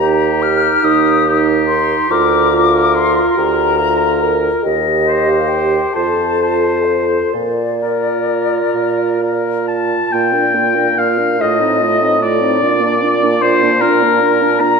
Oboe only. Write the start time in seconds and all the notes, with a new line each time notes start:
0.01 G4
1.28 G4
2.11 A#4
2.55 A#4
3.77 A#4
5.07 C5
5.95 C5
6.42 C5
7.82 A#4
9.23 A#4
9.68 A5
10.12 G5
10.98 F5
11.41 D#5
12.22 D5
13.42 C5
13.81 A#4
14.60 A#5